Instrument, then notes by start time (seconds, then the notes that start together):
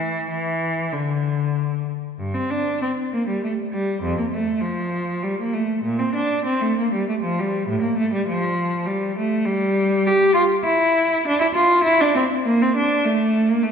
cello
Already playing: E3
0.30 E3
0.93 D3
2.19 G2
2.34 C4
2.51 D4
2.82 C4
3.13 A#3
3.28 G3
3.43 A3
3.73 G3
4.02 F2
4.18 A#3
4.32 A3
4.62 F3
5.23 G3
5.39 A#3
5.53 A3
5.84 A#2
5.99 C4
6.14 D4
6.45 C4
6.61 A3
6.78 A#3
6.93 G3
7.08 A3
7.23 F3
7.40 G3
7.68 A2
7.81 A#3
7.98 A3
8.13 G3
8.28 F3
8.86 G3
9.18 A3
9.45 G3
10.07 G4
10.34 F4
10.64 E4
11.27 D4
11.40 E4
11.54 F4
11.84 E4
12.01 D4
12.16 C4
12.45 A#3
12.62 C4
12.76 D4
13.05 A3
13.50 A#3
13.63 A3